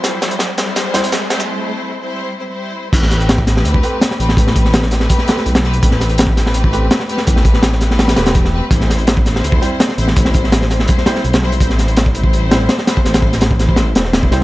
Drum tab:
CC |----------------|----------------|x---------------|----------------|
HH |x-xxx-x-x-xxx-x-|----------------|x-xxx-x-x-x-x-x-|x-x-x-x-x-x-xx-x|
SH |x-x-x-x-x-x-x-xx|----------------|----------------|----------------|
SD |o-o-o-ooo-o-oooo|----------------|-oo-o-oo----oo-o|-o-ooooo-ooo-oo-|
BD |----------------|----------------|o----o---o------|o-o-----o-------|

CC |----------------|----------------|----------------|----------------|
HH |x-xxx-x-x-x-x-x-|x-x-x-x-xxxxx---|x-xxx-x-x-x-x-x-|x-x-x-x-x-x-xx-x|
SH |----------------|----------------|----------------|----------------|
SD |-oo-o-oo----oo-o|-o-ooooooooo-o--|-oo-o-oo----oo-o|-o-ooooo-ooo-oo-|
BD |o----o---o------|o-o---------o---|o----o---o------|o-o-----o-------|

CC |----------------|----------------|
HH |x-xxx-x-x-x-x-x-|xx-xx-x-x-x-x-x-|
SH |----------------|----------------|
SD |-oo-o-----o-ooo-|oo-oo-o-o-ooo-o-|
BD |o----o-o-------o|--o--o-o-----o--|